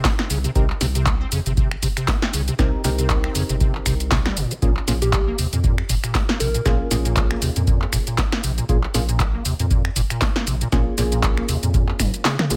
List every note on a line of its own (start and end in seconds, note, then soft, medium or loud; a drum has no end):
0.00 0.53 C4 medium
0.00 0.53 D#4 medium
0.00 0.53 G4 medium
0.00 0.53 A#4 medium
0.05 0.12 C4 loud
0.05 kick loud
0.05 snare medium
0.05 clap loud
0.05 open hi-hat medium
0.05 shaker soft
0.19 0.28 C4 medium
0.19 finger snap medium
0.19 snare medium
0.30 0.47 C2 medium
0.30 0.38 C#3 medium
0.30 open hi-hat loud
0.30 shaker medium
0.44 0.50 C3 medium
0.44 closed hi-hat medium
0.44 shaker soft
0.55 0.72 C2 loud
0.55 0.67 C3 medium
0.55 0.64 C4 medium
0.55 0.64 D#4 medium
0.55 0.64 G4 medium
0.55 0.64 A#4 medium
0.55 kick loud
0.55 closed hi-hat medium
0.55 shaker soft
0.70 clap soft
0.81 1.25 C2 medium
0.81 0.86 C3 loud
0.81 snare soft
0.81 open hi-hat loud
0.81 shaker medium
0.95 1.08 C3 medium
0.95 closed hi-hat medium
0.95 shaker soft
1.06 1.14 C4 loud
1.06 kick loud
1.06 clap loud
1.06 closed hi-hat soft
1.06 shaker soft
1.21 1.30 C4 medium
1.32 1.41 F2 medium
1.32 1.40 C#3 medium
1.32 open hi-hat loud
1.32 shaker medium
1.46 1.76 G1 medium
1.46 1.52 C3 medium
1.46 closed hi-hat medium
1.46 shaker soft
1.57 1.69 C3 medium
1.57 kick loud
1.57 closed hi-hat medium
1.57 shaker soft
1.71 finger snap medium
1.83 1.91 G1 medium
1.83 1.87 C3 loud
1.83 kick medium
1.83 open hi-hat loud
1.83 shaker medium
1.97 2.10 C3 medium
1.97 finger snap medium
1.97 closed hi-hat medium
1.97 shaker soft
2.08 2.16 C4 loud
2.08 kick loud
2.08 snare medium
2.08 clap loud
2.08 open hi-hat medium
2.08 shaker soft
2.22 2.31 C4 medium
2.22 snare medium
2.33 2.50 C2 medium
2.33 2.41 C#3 medium
2.33 open hi-hat loud
2.33 shaker medium
2.48 2.54 C3 medium
2.48 closed hi-hat medium
2.48 shaker soft
2.59 2.76 C2 loud
2.59 2.71 C3 medium
2.59 2.82 C4 medium
2.59 2.82 D#4 medium
2.59 2.82 G4 medium
2.59 2.82 A#4 loud
2.59 kick loud
2.59 snare medium
2.59 closed hi-hat soft
2.59 shaker soft
2.84 3.28 C2 medium
2.84 2.89 C3 loud
2.84 4.35 C4 medium
2.84 4.35 D#4 medium
2.84 4.35 G4 medium
2.84 4.35 A#4 medium
2.84 snare soft
2.84 open hi-hat loud
2.84 shaker medium
2.99 3.11 C3 medium
2.99 closed hi-hat medium
2.99 shaker soft
3.10 3.18 C4 loud
3.10 kick loud
3.10 clap loud
3.10 closed hi-hat medium
3.10 shaker soft
3.24 3.33 C4 medium
3.24 finger snap medium
3.35 3.44 F2 medium
3.35 3.43 C#3 medium
3.35 open hi-hat loud
3.35 shaker medium
3.49 3.79 G1 medium
3.49 3.56 C3 medium
3.49 closed hi-hat medium
3.49 shaker soft
3.61 3.72 C3 medium
3.61 kick loud
3.61 closed hi-hat medium
3.61 shaker soft
3.75 clap soft
3.86 4.30 C2 medium
3.86 3.94 C3 loud
3.86 finger snap medium
3.86 kick medium
3.86 open hi-hat loud
3.86 shaker medium
4.00 closed hi-hat medium
4.00 shaker soft
4.11 4.19 C3 loud
4.11 kick loud
4.11 snare medium
4.11 clap loud
4.11 open hi-hat medium
4.11 shaker soft
4.26 4.38 G3 medium
4.26 finger snap medium
4.26 snare medium
4.37 4.46 G1 loud
4.37 4.53 A#2 medium
4.37 open hi-hat loud
4.37 shaker medium
4.51 4.55 C4 loud
4.51 closed hi-hat medium
4.51 shaker soft
4.62 4.79 A#1 loud
4.62 4.74 A#2 medium
4.62 4.71 A#3 medium
4.62 4.71 C#4 medium
4.62 4.71 F4 medium
4.62 4.71 G#4 medium
4.62 kick loud
4.62 closed hi-hat medium
4.62 shaker soft
4.77 clap soft
4.88 5.32 A#1 loud
4.88 4.92 A#2 loud
4.88 4.96 A#3 medium
4.88 4.96 C#4 medium
4.88 4.96 F4 medium
4.88 4.96 G#4 medium
4.88 snare soft
4.88 open hi-hat loud
4.88 shaker medium
5.02 5.15 A#2 medium
5.02 5.39 G4 medium
5.02 closed hi-hat medium
5.02 shaker soft
5.13 5.21 A#3 loud
5.13 kick loud
5.13 clap loud
5.13 closed hi-hat medium
5.13 shaker soft
5.27 5.37 A#3 medium
5.38 5.47 D#2 medium
5.38 5.46 C3 medium
5.38 open hi-hat loud
5.38 shaker medium
5.53 5.83 F2 medium
5.53 5.59 A#2 medium
5.53 closed hi-hat medium
5.53 shaker soft
5.64 5.76 A#2 medium
5.64 kick loud
5.64 closed hi-hat soft
5.64 shaker soft
5.78 finger snap medium
5.89 5.98 F1 medium
5.89 5.94 A#2 loud
5.89 kick medium
5.89 open hi-hat loud
5.89 shaker medium
6.04 6.16 A#2 medium
6.04 finger snap medium
6.04 closed hi-hat medium
6.04 shaker soft
6.15 6.23 A#3 loud
6.15 kick loud
6.15 snare medium
6.15 clap loud
6.15 open hi-hat medium
6.15 shaker soft
6.29 6.38 A#3 medium
6.29 snare medium
6.40 6.57 A#1 medium
6.40 6.48 C3 medium
6.40 6.91 A#4 medium
6.40 open hi-hat loud
6.40 shaker medium
6.54 6.61 A#2 medium
6.54 closed hi-hat medium
6.54 shaker soft
6.66 6.83 A#1 loud
6.66 6.77 A#2 medium
6.66 6.88 A#3 medium
6.66 6.88 C#4 medium
6.66 6.88 F4 medium
6.66 6.88 G#4 medium
6.66 kick loud
6.66 snare medium
6.66 closed hi-hat medium
6.66 shaker soft
6.91 7.35 A#1 medium
6.91 6.96 A#2 loud
6.91 8.66 A#3 medium
6.91 8.66 C#4 medium
6.91 8.66 F4 medium
6.91 8.66 G#4 medium
6.91 snare soft
6.91 open hi-hat loud
6.91 shaker medium
7.05 7.18 A#2 medium
7.05 closed hi-hat medium
7.05 shaker soft
7.16 7.24 A#3 loud
7.16 kick loud
7.16 clap loud
7.16 closed hi-hat medium
7.16 shaker soft
7.31 7.40 A#3 medium
7.31 finger snap medium
7.42 7.51 D#2 medium
7.42 7.50 C3 medium
7.42 open hi-hat loud
7.42 shaker medium
7.56 7.86 F2 medium
7.56 7.62 A#2 medium
7.56 closed hi-hat medium
7.56 shaker soft
7.67 7.79 A#2 medium
7.67 kick loud
7.67 closed hi-hat medium
7.67 shaker soft
7.82 clap soft
7.93 8.02 F1 medium
7.93 7.97 A#2 loud
7.93 finger snap medium
7.93 kick medium
7.93 open hi-hat loud
7.93 shaker medium
8.07 8.20 A#2 medium
8.07 closed hi-hat medium
8.07 shaker soft
8.18 8.26 A#3 loud
8.18 kick loud
8.18 snare medium
8.18 clap loud
8.18 open hi-hat medium
8.18 shaker soft
8.32 8.42 A#3 medium
8.32 finger snap medium
8.32 snare medium
8.44 8.61 A#1 medium
8.44 8.51 C3 medium
8.44 open hi-hat loud
8.44 shaker medium
8.58 8.64 A#2 medium
8.58 closed hi-hat medium
8.58 shaker soft
8.69 8.86 A#1 loud
8.69 8.81 A#2 medium
8.69 8.77 A#3 medium
8.69 8.77 C#4 medium
8.69 8.77 F4 medium
8.69 8.77 G#4 medium
8.69 kick loud
8.69 closed hi-hat medium
8.69 shaker soft
8.83 clap soft
8.94 9.38 A#1 loud
8.94 8.99 A#2 loud
8.94 9.03 A#3 medium
8.94 9.03 C#4 medium
8.94 9.03 F4 medium
8.94 9.03 G#4 medium
8.94 snare soft
8.94 open hi-hat loud
8.94 shaker medium
9.09 9.21 A#2 medium
9.09 closed hi-hat medium
9.09 shaker soft
9.20 9.28 A#3 loud
9.20 kick loud
9.20 clap loud
9.20 closed hi-hat medium
9.20 shaker soft
9.34 9.43 A#3 medium
9.45 9.54 D#2 medium
9.45 9.53 C3 medium
9.45 open hi-hat loud
9.45 shaker medium
9.60 9.89 F2 medium
9.60 9.66 A#2 medium
9.60 closed hi-hat medium
9.60 shaker soft
9.71 9.82 A#2 medium
9.71 kick loud
9.71 closed hi-hat medium
9.71 shaker soft
9.85 finger snap medium
9.96 10.05 F1 medium
9.96 10.01 A#2 loud
9.96 kick medium
9.96 open hi-hat loud
9.96 shaker medium
10.10 10.23 A#2 medium
10.10 finger snap medium
10.10 closed hi-hat medium
10.10 shaker soft
10.22 10.29 A#3 loud
10.22 kick loud
10.22 snare medium
10.22 clap loud
10.22 open hi-hat medium
10.22 shaker soft
10.36 10.45 A#3 medium
10.36 snare medium
10.47 10.64 A#1 medium
10.47 10.55 C3 medium
10.47 open hi-hat medium
10.47 shaker medium
10.61 10.67 A#2 medium
10.61 closed hi-hat medium
10.61 shaker soft
10.72 10.89 A#1 loud
10.72 10.84 A#2 medium
10.72 10.95 A#3 medium
10.72 10.95 C#4 medium
10.72 10.95 F4 medium
10.72 10.95 G#4 medium
10.72 kick loud
10.72 snare medium
10.72 closed hi-hat medium
10.72 shaker soft
10.98 11.42 A#1 medium
10.98 11.03 A#2 loud
10.98 12.48 A#3 medium
10.98 12.48 C#4 medium
10.98 12.48 F4 medium
10.98 12.48 G#4 medium
10.98 snare soft
10.98 open hi-hat loud
10.98 shaker medium
11.12 11.25 A#2 medium
11.12 closed hi-hat medium
11.12 shaker soft
11.23 11.31 A#3 loud
11.23 kick loud
11.23 clap loud
11.23 closed hi-hat medium
11.23 shaker soft
11.37 11.47 A#3 medium
11.37 finger snap medium
11.49 11.58 D#2 medium
11.49 11.56 C3 medium
11.49 open hi-hat loud
11.49 shaker medium
11.63 11.93 F2 medium
11.63 11.69 A#2 medium
11.63 closed hi-hat medium
11.63 shaker soft
11.74 11.86 A#2 medium
11.74 kick loud
11.74 closed hi-hat medium
11.74 shaker soft
11.89 clap soft
11.99 12.08 F1 medium
11.99 12.11 G#2 medium
11.99 finger snap medium
11.99 kick medium
11.99 open hi-hat loud
11.99 high tom medium
11.99 shaker medium
12.14 closed hi-hat medium
12.14 shaker soft
12.25 12.37 C#3 medium
12.25 snare medium
12.25 clap loud
12.25 open hi-hat medium
12.25 shaker soft
12.39 12.45 A#3 medium
12.39 finger snap medium
12.39 snare medium
12.39 mid tom medium
12.50 12.55 A#1 loud
12.50 12.57 A#1 medium
12.50 12.57 A#3 medium
12.50 12.57 C#4 medium
12.50 12.57 F4 medium
12.50 12.57 G#4 medium
12.50 open hi-hat loud
12.50 shaker medium